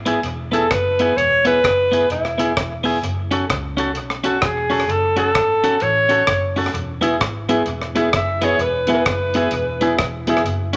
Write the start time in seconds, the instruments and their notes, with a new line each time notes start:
Already playing: fingered electric bass G#1
0.06 clean electric guitar B3 E4 G#4, closed hi-hat
0.23 fingered electric bass E1, closed hi-hat
0.52 clean electric guitar B3 E4 G#4, alto saxophone A4, closed hi-hat
0.71 fingered electric bass F#1, alto saxophone B4, kick, cross-stick, closed hi-hat
0.99 clean electric guitar B3 E4 G#4, closed hi-hat
1.17 fingered electric bass E1, alto saxophone C#5, closed hi-hat
1.45 clean electric guitar B3 E4 G#4, alto saxophone B4, closed hi-hat
1.64 fingered electric bass F#1, kick, cross-stick, closed hi-hat
1.91 clean electric guitar B3 E4 G#4, closed hi-hat
2.10 fingered electric bass E1, alto saxophone E4, closed hi-hat
2.25 cross-stick
2.38 clean electric guitar B3 E4 G#4, closed hi-hat
2.57 fingered electric bass E1, kick, cross-stick, closed hi-hat
2.84 clean electric guitar B3 E4 G#4, open hi-hat
3.03 fingered electric bass F#1, closed hi-hat
3.31 clean electric guitar C#4 F#4 A4, closed hi-hat
3.49 fingered electric bass C#2, kick, cross-stick, closed hi-hat
3.77 clean electric guitar C#4 F#4 A4, closed hi-hat
3.95 fingered electric bass B1, closed hi-hat
4.10 cross-stick
4.24 clean electric guitar C#4 F#4 A4, alto saxophone F#4, closed hi-hat
4.42 fingered electric bass E1, alto saxophone G#4, kick, cross-stick, closed hi-hat
4.70 clean electric guitar C#4 F#4 A4, open hi-hat
4.80 cross-stick
4.88 fingered electric bass F#1, alto saxophone A4, closed hi-hat
5.16 clean electric guitar C#4 F#4 A4, alto saxophone A4, closed hi-hat
5.35 fingered electric bass G#1, kick, cross-stick, closed hi-hat
5.64 clean electric guitar C#4 F#4 A4, closed hi-hat
5.80 fingered electric bass A1, alto saxophone C#5, closed hi-hat
6.09 clean electric guitar C#4 F#4 A4, closed hi-hat
6.27 fingered electric bass F#1, kick, cross-stick, closed hi-hat
6.56 clean electric guitar C#4 F#4 A4, open hi-hat
6.66 cross-stick
6.74 fingered electric bass E1, closed hi-hat
7.01 clean electric guitar B3 E4 G#4, upright piano B3 E4 G#4, closed hi-hat
7.21 fingered electric bass G#1, upright piano E4 G#4, kick, cross-stick, closed hi-hat
7.49 upright piano B3 E4 G#4, clean electric guitar B3 E4 G#4, closed hi-hat
7.66 fingered electric bass E1, closed hi-hat
7.82 cross-stick
7.95 upright piano B3 E4 G#4, clean electric guitar B3 E4 G#4, closed hi-hat
8.13 fingered electric bass F#1, upright piano E4 G#4, alto saxophone E5, kick, cross-stick, closed hi-hat
8.41 upright piano B3 E4 G#4, clean electric guitar B3 E4 G#4, alto saxophone C#5, closed hi-hat
8.59 fingered electric bass E1, alto saxophone B4, closed hi-hat
8.86 upright piano B3 E4 G#4, clean electric guitar B3 E4 G#4, closed hi-hat
8.94 alto saxophone B4
9.06 fingered electric bass F#1, upright piano E4 G#4, kick, cross-stick, closed hi-hat
9.34 upright piano B3 E4 G#4, clean electric guitar B3 E4 G#4, closed hi-hat
9.51 fingered electric bass E1, closed hi-hat
9.80 upright piano B3 E4 G#4, clean electric guitar B3 E4 G#4, closed hi-hat
9.99 fingered electric bass E1, kick, cross-stick, closed hi-hat
10.27 upright piano B3 E4 G#4, clean electric guitar B3 E4 G#4, closed hi-hat
10.37 cross-stick
10.44 fingered electric bass F#1, closed hi-hat
10.73 upright piano C#4 F#4, clean electric guitar C#4, closed hi-hat